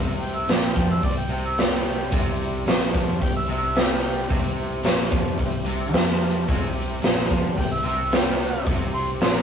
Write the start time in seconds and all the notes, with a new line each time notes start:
Already playing: C2 C3 C4 E4 G4
0.21 G5, open hi-hat
0.36 E5
0.48 A#1 A#2 D5, snare, open hi-hat
0.64 G5
0.75 F2 F3 G5, kick, open hi-hat
0.91 E5
1.03 C2 C3 D5, kick, open hi-hat
1.18 G5
1.29 C2 C3 G5, open hi-hat
1.46 E5
1.58 D5, snare, open hi-hat
1.74 G5
1.85 G5, open hi-hat
2.10 C2 C3 G3 C4 E4, kick, open hi-hat
2.39 open hi-hat
2.66 A#1 A#2, snare, open hi-hat
2.93 F2 F3, kick, open hi-hat
3.21 C2 C3 G5, kick, open hi-hat
3.36 E5
3.47 C2 C3 E5, open hi-hat
3.76 snare, open hi-hat
3.80 D5 E5 G5
4.03 open hi-hat
4.29 C2 C3 C4 E4 G4, kick, open hi-hat
4.58 open hi-hat
4.83 A#1 A#2, snare, open hi-hat
5.11 F2 F3, kick, open hi-hat
5.38 C2 C3, kick, open hi-hat
5.66 C2 C3, open hi-hat
5.92 F2 F3, snare, open hi-hat
6.21 open hi-hat
6.48 C2 C3 C#4 F4 G#4, kick, open hi-hat
6.68 C4 E4 G4
6.76 open hi-hat
7.02 A#1 A#2, snare, open hi-hat
7.19 snare
7.29 F2 F3, kick, open hi-hat
7.56 C2 C3 G5, kick, open hi-hat
7.72 E5
7.84 C2 C3 G4 C5 E5, open hi-hat
8.12 G5, snare, open hi-hat
8.40 open hi-hat
8.66 C2 C3 C4 E4 G4, kick, open hi-hat
8.94 C6, open hi-hat
9.21 A#1 A#2 C6, snare, open hi-hat
9.35 A#5